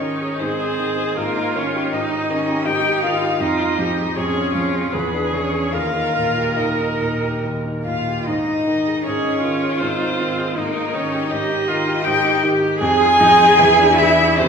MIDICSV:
0, 0, Header, 1, 5, 480
1, 0, Start_track
1, 0, Tempo, 771208
1, 731, Time_signature, 3, 2, 24, 8
1, 1204, Tempo, 750000
1, 3124, Tempo, 834492
1, 5044, Tempo, 765306
1, 6484, Tempo, 744417
1, 7924, Tempo, 793651
1, 8942, End_track
2, 0, Start_track
2, 0, Title_t, "Violin"
2, 0, Program_c, 0, 40
2, 0, Note_on_c, 0, 73, 50
2, 245, Note_on_c, 0, 72, 52
2, 254, Note_off_c, 0, 73, 0
2, 722, Note_off_c, 0, 72, 0
2, 725, Note_on_c, 0, 70, 57
2, 965, Note_on_c, 0, 73, 50
2, 974, Note_off_c, 0, 70, 0
2, 1195, Note_on_c, 0, 75, 53
2, 1204, Note_off_c, 0, 73, 0
2, 1663, Note_on_c, 0, 79, 68
2, 1673, Note_off_c, 0, 75, 0
2, 1898, Note_off_c, 0, 79, 0
2, 1902, Note_on_c, 0, 77, 58
2, 2144, Note_on_c, 0, 75, 55
2, 2153, Note_off_c, 0, 77, 0
2, 2630, Note_on_c, 0, 73, 55
2, 2639, Note_off_c, 0, 75, 0
2, 3116, Note_on_c, 0, 71, 48
2, 3126, Note_off_c, 0, 73, 0
2, 3349, Note_on_c, 0, 73, 46
2, 3358, Note_off_c, 0, 71, 0
2, 3580, Note_on_c, 0, 77, 60
2, 3589, Note_off_c, 0, 73, 0
2, 4060, Note_on_c, 0, 75, 40
2, 4069, Note_off_c, 0, 77, 0
2, 4556, Note_off_c, 0, 75, 0
2, 4801, Note_on_c, 0, 77, 45
2, 5024, Note_off_c, 0, 77, 0
2, 5037, Note_on_c, 0, 75, 58
2, 5521, Note_off_c, 0, 75, 0
2, 5532, Note_on_c, 0, 73, 57
2, 6000, Note_on_c, 0, 72, 57
2, 6010, Note_off_c, 0, 73, 0
2, 6480, Note_off_c, 0, 72, 0
2, 6488, Note_on_c, 0, 70, 60
2, 6722, Note_on_c, 0, 73, 58
2, 6732, Note_off_c, 0, 70, 0
2, 6957, Note_on_c, 0, 75, 61
2, 6967, Note_off_c, 0, 73, 0
2, 7433, Note_on_c, 0, 79, 72
2, 7442, Note_off_c, 0, 75, 0
2, 7677, Note_off_c, 0, 79, 0
2, 7922, Note_on_c, 0, 80, 103
2, 8639, Note_on_c, 0, 76, 88
2, 8648, Note_off_c, 0, 80, 0
2, 8879, Note_on_c, 0, 72, 79
2, 8889, Note_off_c, 0, 76, 0
2, 8942, Note_off_c, 0, 72, 0
2, 8942, End_track
3, 0, Start_track
3, 0, Title_t, "Viola"
3, 0, Program_c, 1, 41
3, 2, Note_on_c, 1, 63, 40
3, 250, Note_on_c, 1, 68, 44
3, 259, Note_off_c, 1, 63, 0
3, 726, Note_on_c, 1, 65, 53
3, 735, Note_off_c, 1, 68, 0
3, 1203, Note_on_c, 1, 63, 45
3, 1212, Note_off_c, 1, 65, 0
3, 1439, Note_on_c, 1, 61, 47
3, 1449, Note_off_c, 1, 63, 0
3, 1671, Note_on_c, 1, 63, 45
3, 1680, Note_off_c, 1, 61, 0
3, 2141, Note_off_c, 1, 63, 0
3, 2145, Note_on_c, 1, 65, 54
3, 2390, Note_on_c, 1, 67, 45
3, 2399, Note_off_c, 1, 65, 0
3, 2625, Note_off_c, 1, 67, 0
3, 2629, Note_on_c, 1, 68, 51
3, 2870, Note_off_c, 1, 68, 0
3, 2881, Note_on_c, 1, 65, 43
3, 3123, Note_on_c, 1, 68, 41
3, 3131, Note_off_c, 1, 65, 0
3, 3589, Note_on_c, 1, 70, 47
3, 3598, Note_off_c, 1, 68, 0
3, 4804, Note_off_c, 1, 70, 0
3, 5531, Note_on_c, 1, 68, 49
3, 5753, Note_off_c, 1, 68, 0
3, 5772, Note_on_c, 1, 65, 50
3, 6486, Note_on_c, 1, 63, 47
3, 6496, Note_off_c, 1, 65, 0
3, 6960, Note_on_c, 1, 67, 60
3, 6969, Note_off_c, 1, 63, 0
3, 7198, Note_on_c, 1, 65, 54
3, 7207, Note_off_c, 1, 67, 0
3, 7433, Note_on_c, 1, 63, 50
3, 7442, Note_off_c, 1, 65, 0
3, 7682, Note_on_c, 1, 67, 63
3, 7692, Note_off_c, 1, 63, 0
3, 7918, Note_off_c, 1, 67, 0
3, 7922, Note_on_c, 1, 68, 72
3, 8165, Note_on_c, 1, 63, 60
3, 8174, Note_off_c, 1, 68, 0
3, 8403, Note_on_c, 1, 64, 64
3, 8413, Note_off_c, 1, 63, 0
3, 8880, Note_on_c, 1, 67, 67
3, 8889, Note_off_c, 1, 64, 0
3, 8942, Note_off_c, 1, 67, 0
3, 8942, End_track
4, 0, Start_track
4, 0, Title_t, "Cello"
4, 0, Program_c, 2, 42
4, 0, Note_on_c, 2, 61, 33
4, 252, Note_on_c, 2, 60, 42
4, 261, Note_off_c, 2, 61, 0
4, 733, Note_off_c, 2, 60, 0
4, 736, Note_on_c, 2, 58, 45
4, 974, Note_on_c, 2, 61, 44
4, 984, Note_off_c, 2, 58, 0
4, 1201, Note_off_c, 2, 61, 0
4, 1205, Note_on_c, 2, 63, 44
4, 1676, Note_on_c, 2, 67, 58
4, 1686, Note_off_c, 2, 63, 0
4, 1906, Note_on_c, 2, 65, 57
4, 1915, Note_off_c, 2, 67, 0
4, 2143, Note_off_c, 2, 65, 0
4, 2146, Note_on_c, 2, 63, 40
4, 2625, Note_off_c, 2, 63, 0
4, 2641, Note_on_c, 2, 61, 42
4, 3117, Note_off_c, 2, 61, 0
4, 3126, Note_on_c, 2, 59, 38
4, 3348, Note_off_c, 2, 59, 0
4, 3351, Note_on_c, 2, 61, 42
4, 3586, Note_on_c, 2, 65, 45
4, 3595, Note_off_c, 2, 61, 0
4, 4063, Note_on_c, 2, 63, 33
4, 4072, Note_off_c, 2, 65, 0
4, 4557, Note_off_c, 2, 63, 0
4, 4800, Note_on_c, 2, 65, 39
4, 5037, Note_on_c, 2, 63, 47
4, 5046, Note_off_c, 2, 65, 0
4, 5526, Note_on_c, 2, 61, 42
4, 5536, Note_off_c, 2, 63, 0
4, 6007, Note_on_c, 2, 60, 53
4, 6017, Note_off_c, 2, 61, 0
4, 6475, Note_on_c, 2, 58, 45
4, 6484, Note_off_c, 2, 60, 0
4, 6720, Note_on_c, 2, 61, 47
4, 6730, Note_off_c, 2, 58, 0
4, 6955, Note_off_c, 2, 61, 0
4, 6959, Note_on_c, 2, 63, 46
4, 7433, Note_on_c, 2, 67, 61
4, 7443, Note_off_c, 2, 63, 0
4, 7677, Note_off_c, 2, 67, 0
4, 7920, Note_on_c, 2, 68, 77
4, 8632, Note_on_c, 2, 64, 68
4, 8642, Note_off_c, 2, 68, 0
4, 8875, Note_on_c, 2, 60, 72
4, 8884, Note_off_c, 2, 64, 0
4, 8942, Note_off_c, 2, 60, 0
4, 8942, End_track
5, 0, Start_track
5, 0, Title_t, "Grand piano"
5, 0, Program_c, 3, 0
5, 0, Control_c, 3, 64, 127
5, 0, Note_on_c, 3, 44, 26
5, 0, Note_on_c, 3, 51, 24
5, 0, Note_on_c, 3, 63, 26
5, 0, Note_on_c, 3, 68, 23
5, 6, Note_off_c, 3, 51, 0
5, 6, Note_on_c, 3, 51, 26
5, 78, Note_off_c, 3, 63, 0
5, 131, Note_off_c, 3, 68, 0
5, 131, Note_on_c, 3, 68, 29
5, 201, Note_off_c, 3, 51, 0
5, 243, Note_off_c, 3, 44, 0
5, 252, Note_on_c, 3, 44, 36
5, 324, Note_off_c, 3, 68, 0
5, 369, Note_on_c, 3, 63, 27
5, 491, Note_on_c, 3, 51, 26
5, 562, Note_off_c, 3, 63, 0
5, 609, Note_on_c, 3, 68, 33
5, 683, Note_off_c, 3, 51, 0
5, 719, Note_off_c, 3, 44, 0
5, 730, Note_off_c, 3, 68, 0
5, 731, Note_on_c, 3, 44, 42
5, 742, Control_c, 3, 64, 0
5, 841, Control_c, 3, 64, 127
5, 849, Note_on_c, 3, 63, 33
5, 970, Note_on_c, 3, 51, 32
5, 1040, Note_off_c, 3, 63, 0
5, 1085, Note_on_c, 3, 67, 36
5, 1158, Note_off_c, 3, 51, 0
5, 1191, Note_off_c, 3, 44, 0
5, 1200, Note_on_c, 3, 44, 34
5, 1274, Note_off_c, 3, 67, 0
5, 1322, Note_on_c, 3, 63, 37
5, 1437, Note_on_c, 3, 51, 34
5, 1511, Note_off_c, 3, 63, 0
5, 1553, Note_on_c, 3, 67, 39
5, 1627, Note_off_c, 3, 51, 0
5, 1662, Note_off_c, 3, 44, 0
5, 1671, Note_on_c, 3, 44, 38
5, 1743, Note_off_c, 3, 67, 0
5, 1789, Note_on_c, 3, 63, 32
5, 1909, Note_on_c, 3, 51, 36
5, 1979, Note_off_c, 3, 63, 0
5, 2027, Note_on_c, 3, 67, 35
5, 2100, Note_off_c, 3, 51, 0
5, 2132, Note_off_c, 3, 44, 0
5, 2143, Note_on_c, 3, 41, 45
5, 2147, Note_off_c, 3, 67, 0
5, 2159, Control_c, 3, 64, 0
5, 2256, Control_c, 3, 64, 127
5, 2270, Note_on_c, 3, 65, 34
5, 2390, Note_on_c, 3, 53, 34
5, 2466, Note_off_c, 3, 65, 0
5, 2516, Note_on_c, 3, 68, 32
5, 2587, Note_off_c, 3, 53, 0
5, 2629, Note_off_c, 3, 41, 0
5, 2638, Note_on_c, 3, 41, 33
5, 2709, Note_off_c, 3, 68, 0
5, 2760, Note_on_c, 3, 65, 34
5, 2881, Note_on_c, 3, 53, 28
5, 2952, Note_off_c, 3, 65, 0
5, 3002, Note_on_c, 3, 68, 35
5, 3075, Note_off_c, 3, 53, 0
5, 3110, Note_off_c, 3, 41, 0
5, 3125, Note_off_c, 3, 68, 0
5, 3130, Note_on_c, 3, 40, 41
5, 3135, Control_c, 3, 64, 0
5, 3224, Control_c, 3, 64, 127
5, 3239, Note_on_c, 3, 62, 26
5, 3353, Note_on_c, 3, 52, 27
5, 3425, Note_off_c, 3, 62, 0
5, 3472, Note_on_c, 3, 68, 27
5, 3542, Note_off_c, 3, 52, 0
5, 3579, Note_off_c, 3, 40, 0
5, 3591, Note_off_c, 3, 68, 0
5, 3591, Note_on_c, 3, 39, 35
5, 3602, Control_c, 3, 64, 0
5, 3705, Control_c, 3, 64, 127
5, 3711, Note_on_c, 3, 63, 23
5, 3834, Note_on_c, 3, 46, 25
5, 3902, Note_off_c, 3, 63, 0
5, 3956, Note_on_c, 3, 67, 27
5, 4025, Note_off_c, 3, 46, 0
5, 4066, Note_off_c, 3, 39, 0
5, 4075, Note_on_c, 3, 39, 28
5, 4148, Note_off_c, 3, 67, 0
5, 4201, Note_on_c, 3, 63, 26
5, 4319, Note_on_c, 3, 46, 27
5, 4394, Note_off_c, 3, 63, 0
5, 4440, Note_on_c, 3, 67, 29
5, 4514, Note_off_c, 3, 46, 0
5, 4557, Note_off_c, 3, 39, 0
5, 4566, Note_on_c, 3, 39, 27
5, 4634, Note_off_c, 3, 67, 0
5, 4687, Note_on_c, 3, 63, 25
5, 4812, Note_on_c, 3, 46, 25
5, 4879, Note_off_c, 3, 63, 0
5, 4932, Note_on_c, 3, 67, 26
5, 4999, Note_off_c, 3, 46, 0
5, 5030, Note_off_c, 3, 39, 0
5, 5046, Note_off_c, 3, 67, 0
5, 5051, Note_on_c, 3, 44, 42
5, 5053, Control_c, 3, 64, 0
5, 5161, Control_c, 3, 64, 127
5, 5173, Note_on_c, 3, 63, 32
5, 5295, Note_on_c, 3, 51, 31
5, 5368, Note_off_c, 3, 63, 0
5, 5418, Note_on_c, 3, 68, 30
5, 5488, Note_off_c, 3, 51, 0
5, 5530, Note_off_c, 3, 44, 0
5, 5539, Note_on_c, 3, 44, 31
5, 5608, Note_off_c, 3, 68, 0
5, 5654, Note_on_c, 3, 63, 31
5, 5774, Note_on_c, 3, 51, 34
5, 5843, Note_off_c, 3, 63, 0
5, 5891, Note_on_c, 3, 68, 34
5, 5961, Note_off_c, 3, 51, 0
5, 5999, Note_off_c, 3, 44, 0
5, 6008, Note_on_c, 3, 44, 42
5, 6080, Note_off_c, 3, 68, 0
5, 6129, Note_on_c, 3, 63, 32
5, 6254, Note_on_c, 3, 51, 31
5, 6319, Note_off_c, 3, 63, 0
5, 6371, Note_on_c, 3, 68, 36
5, 6440, Note_off_c, 3, 51, 0
5, 6470, Note_off_c, 3, 44, 0
5, 6483, Note_on_c, 3, 44, 44
5, 6486, Note_off_c, 3, 68, 0
5, 6494, Control_c, 3, 64, 0
5, 6578, Control_c, 3, 64, 127
5, 6606, Note_on_c, 3, 63, 34
5, 6730, Note_on_c, 3, 51, 40
5, 6795, Note_off_c, 3, 63, 0
5, 6846, Note_on_c, 3, 67, 36
5, 6915, Note_off_c, 3, 51, 0
5, 6957, Note_off_c, 3, 44, 0
5, 6967, Note_on_c, 3, 44, 39
5, 7032, Note_off_c, 3, 67, 0
5, 7085, Note_on_c, 3, 63, 36
5, 7207, Note_on_c, 3, 51, 44
5, 7274, Note_off_c, 3, 63, 0
5, 7327, Note_on_c, 3, 67, 43
5, 7396, Note_off_c, 3, 51, 0
5, 7439, Note_off_c, 3, 44, 0
5, 7448, Note_on_c, 3, 44, 51
5, 7516, Note_off_c, 3, 67, 0
5, 7564, Note_on_c, 3, 63, 39
5, 7690, Note_on_c, 3, 51, 42
5, 7754, Note_off_c, 3, 63, 0
5, 7808, Note_on_c, 3, 67, 40
5, 7879, Note_off_c, 3, 51, 0
5, 7913, Note_off_c, 3, 44, 0
5, 7926, Note_off_c, 3, 67, 0
5, 7930, Note_on_c, 3, 41, 62
5, 7934, Control_c, 3, 64, 0
5, 8018, Control_c, 3, 64, 127
5, 8047, Note_on_c, 3, 65, 44
5, 8169, Note_on_c, 3, 53, 49
5, 8234, Note_off_c, 3, 65, 0
5, 8285, Note_on_c, 3, 68, 46
5, 8356, Note_off_c, 3, 53, 0
5, 8387, Note_off_c, 3, 41, 0
5, 8399, Note_on_c, 3, 40, 54
5, 8402, Note_off_c, 3, 68, 0
5, 8408, Control_c, 3, 64, 0
5, 8512, Control_c, 3, 64, 127
5, 8520, Note_on_c, 3, 62, 46
5, 8641, Note_on_c, 3, 52, 50
5, 8712, Note_off_c, 3, 62, 0
5, 8763, Note_on_c, 3, 68, 47
5, 8834, Note_off_c, 3, 52, 0
5, 8868, Note_off_c, 3, 40, 0
5, 8884, Note_off_c, 3, 68, 0
5, 8886, Note_on_c, 3, 39, 63
5, 8894, Control_c, 3, 64, 0
5, 8942, Note_off_c, 3, 39, 0
5, 8942, End_track
0, 0, End_of_file